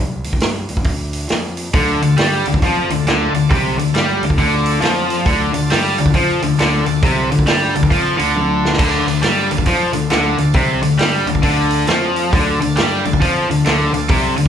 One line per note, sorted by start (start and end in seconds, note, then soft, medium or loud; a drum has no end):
0.00 0.23 C2 medium
0.24 0.41 D2 medium
0.24 open hi-hat medium
0.33 kick medium
0.40 0.68 G2 medium
0.40 snare loud
0.40 open hi-hat medium
0.69 0.84 D2 medium
0.69 open hi-hat soft
0.77 kick medium
0.84 1.27 D2 medium
0.84 kick medium
0.84 open hi-hat medium
1.13 open hi-hat medium
1.29 1.72 F2 medium
1.29 snare medium
1.29 open hi-hat medium
1.57 open hi-hat medium
1.73 2.00 D2 medium
1.73 2.01 D3 loud
1.73 5.24 A3 medium
1.73 5.24 F4 medium
1.73 5.24 D5 medium
1.73 kick loud
1.73 open hi-hat medium
2.02 2.17 D2 medium
2.02 2.16 D3 medium
2.02 open hi-hat medium
2.17 2.44 G2 medium
2.17 2.45 G3 loud
2.17 snare loud
2.17 open hi-hat medium
2.46 2.61 D2 medium
2.46 2.60 D3 medium
2.46 open hi-hat soft
2.54 kick medium
2.62 2.88 F2 medium
2.62 2.90 F3 loud
2.62 kick medium
2.62 open hi-hat medium
2.89 3.04 D2 medium
2.89 3.04 D3 medium
2.89 open hi-hat medium
3.04 3.31 D2 medium
3.04 3.34 D3 medium
3.04 open hi-hat medium
3.08 snare loud
3.33 3.49 D2 medium
3.33 3.48 D3 medium
3.33 open hi-hat soft
3.50 3.76 C2 medium
3.50 3.78 C3 medium
3.50 kick loud
3.50 open hi-hat medium
3.76 3.93 D2 medium
3.76 3.92 D3 medium
3.76 open hi-hat medium
3.94 4.20 G2 medium
3.94 4.22 G3 loud
3.94 snare medium
3.94 open hi-hat medium
4.22 4.37 D2 medium
4.22 4.36 D3 medium
4.22 open hi-hat soft
4.30 kick medium
4.38 4.79 D2 medium
4.38 4.81 D3 loud
4.38 kick medium
4.38 open hi-hat medium
4.66 open hi-hat medium
4.81 5.24 F2 medium
4.81 5.26 F3 medium
4.81 snare loud
4.81 open hi-hat medium
5.10 open hi-hat soft
5.25 5.52 D2 medium
5.25 5.54 D3 loud
5.25 8.76 F4 medium
5.25 8.76 A4 medium
5.25 8.75 D5 medium
5.25 kick loud
5.25 open hi-hat medium
5.54 5.70 D2 medium
5.54 5.68 D3 medium
5.54 open hi-hat medium
5.70 5.97 G2 medium
5.70 5.98 G3 loud
5.70 snare loud
5.70 open hi-hat medium
5.98 6.12 D2 medium
5.98 6.12 D3 medium
5.98 open hi-hat medium
6.06 kick medium
6.13 6.40 F2 medium
6.13 6.42 F3 loud
6.13 kick medium
6.13 open hi-hat medium
6.42 6.57 D2 medium
6.42 6.57 D3 medium
6.42 open hi-hat medium
6.58 6.84 D2 medium
6.58 6.86 D3 loud
6.58 snare loud
6.58 open hi-hat medium
6.86 7.01 D2 medium
6.86 7.00 D3 medium
6.86 open hi-hat soft
7.02 7.29 C2 medium
7.02 7.31 C3 loud
7.02 kick loud
7.02 open hi-hat medium
7.31 7.46 D2 medium
7.31 7.45 D3 medium
7.31 open hi-hat medium
7.39 kick medium
7.47 7.73 G2 medium
7.47 7.75 G3 loud
7.47 snare loud
7.47 open hi-hat medium
7.75 7.90 D2 medium
7.75 7.88 D3 medium
7.75 open hi-hat medium
7.83 kick medium
7.91 8.17 F2 medium
7.91 8.17 F3 loud
7.91 kick medium
7.91 open hi-hat medium
8.18 8.76 D2 medium
8.18 8.78 D3 medium
8.18 open hi-hat medium
8.36 high tom medium
8.65 snare medium
8.73 snare medium
8.79 9.05 D2 medium
8.79 9.06 D3 medium
8.79 8.95 A#4 medium
8.79 8.95 D#5 medium
8.79 8.95 F#5 medium
8.79 kick loud
8.79 open hi-hat medium
8.79 crash medium
8.95 12.30 A4 medium
8.95 12.30 D5 medium
8.95 12.30 F5 medium
9.06 9.22 D2 medium
9.06 9.21 D3 medium
9.06 open hi-hat medium
9.22 9.49 G2 medium
9.22 9.50 G3 loud
9.22 snare loud
9.22 open hi-hat medium
9.51 9.65 D2 medium
9.51 9.65 D3 medium
9.51 open hi-hat soft
9.58 kick medium
9.66 9.93 F2 medium
9.66 9.93 F3 loud
9.66 kick medium
9.66 open hi-hat medium
9.93 10.10 D2 medium
9.93 10.08 D3 medium
9.93 open hi-hat medium
10.10 10.37 D2 medium
10.10 10.38 D3 loud
10.10 snare loud
10.10 open hi-hat medium
10.38 10.54 D2 medium
10.38 10.53 D3 medium
10.38 open hi-hat medium
10.54 10.81 C2 medium
10.54 10.83 C3 medium
10.54 kick loud
10.54 open hi-hat medium
10.82 10.97 D2 medium
10.82 10.97 D3 medium
10.82 open hi-hat medium
10.98 11.24 G2 medium
10.98 11.27 G3 loud
10.98 snare loud
10.98 open hi-hat medium
11.25 11.42 D2 medium
11.25 11.41 D3 medium
11.25 open hi-hat soft
11.35 kick medium
11.43 11.85 D2 medium
11.43 11.87 D3 loud
11.43 kick medium
11.43 open hi-hat medium
11.71 open hi-hat medium
11.87 12.30 F2 medium
11.87 12.32 F3 loud
11.87 snare loud
11.87 open hi-hat medium
12.16 open hi-hat soft
12.32 12.59 D2 medium
12.32 12.60 D3 medium
12.32 14.48 A4 medium
12.32 14.48 D5 medium
12.32 14.48 F5 medium
12.32 kick loud
12.32 open hi-hat medium
12.61 12.77 D2 medium
12.61 12.74 D3 medium
12.61 open hi-hat medium
12.77 13.04 G2 medium
12.77 13.04 G3 loud
12.77 snare loud
12.77 open hi-hat medium
13.05 13.21 D2 medium
13.05 13.19 D3 medium
13.05 open hi-hat medium
13.13 kick medium
13.21 13.47 F2 medium
13.21 13.49 F3 loud
13.21 kick medium
13.21 open hi-hat medium
13.48 13.64 D2 medium
13.48 13.63 D3 medium
13.48 open hi-hat medium
13.66 13.91 D2 medium
13.66 13.93 D3 medium
13.66 snare loud
13.66 open hi-hat medium
13.93 14.08 D2 medium
13.93 14.07 D3 medium
13.93 open hi-hat medium
14.09 14.36 C2 medium
14.09 14.37 C3 loud
14.09 kick loud
14.09 open hi-hat medium
14.37 14.48 D2 medium
14.37 14.48 D3 medium
14.37 open hi-hat medium